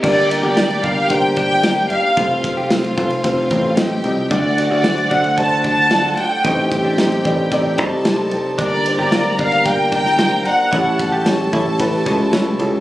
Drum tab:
CC |x---------------|----------------|----------------|----------------|
RD |--x-xxx-x-x-x-x-|x-x-xxxxx-x-x-x-|x-x-xxxxx-x-x-x-|x-x-xxx-x-x-x-x-|
SD |----o-------o---|----o-------o---|----o-------o---|----o-------o---|
BD |o-----o-o-o-----|o-o---o-o-o-----|o-----o-o-o-----|o-o---o-o-o-----|

CC |----------------|----------------|
RD |x-x-x-xxx-x-x-x-|x-x-x-x-x-x-x-x-|
SD |----o------oo---|----o-------o---|
BD |o-----o-o-o-----|o-o---o-o-o-----|